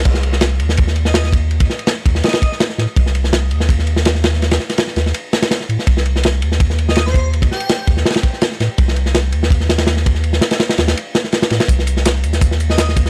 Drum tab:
CC |x-------------------------------|--------------------------------|--------------------------------|--------------------------------|
RD |x---x---x---x---x---x---x---x---|x-x---x-x---x---xxx-x---x---x---|x---x---x---x---x---x---x---x---|x-x---x-x---x---x---x-x-x---x---|
HH |--------------------------------|--------------------------------|--------------------------------|--------------------------------|
SD |--o---o-o-----o---o---o-o-o-----|----o---o-----o-ooo---o-o-o-o---|--o---o-o-----o---o---o-o-o-o-o-|o-o-o-o-o-o-o-o-----o-o-o-o---o-|
BD |o---------------o-----------o---|--o---------o-------o-----------|o---------------o---------------|--------------------------------|

CC |--------------------------------|--------------------------------|--------------------------------|--------------------------------|
RD |x---x---x---x---x---x---x---x---|x-x---x-x---x---xxx-x---x---x---|x---x---x---x---x---x-x-x---x---|x---x-x-x-x-x-x-x---x---x-x-x-x-|
HH |--------------------------------|--------------------------------|--------------------------------|--------------------------------|
SD |--o---o-o-----o---o---o-o-o-----|----o---o-----o-ooo---o-o-o-o---|--o---o-o-----o---o-o-o-o-o---o-|--o-o-o-o-o-o-o-----o-o-o-o-o-o-|
BD |o---------------o-----------o---|--o---------o-------o-----------|o---------------o-----------o---|--------------------------------|

CC |--------------------------------|
RD |x---x---x---x---x---x---x---x---|
HH |x---x---x---x-x-x---x---x---x---|
SD |--o---o-o-o---o---o---o-o-o---o-|
BD |o---------------o-----------o---|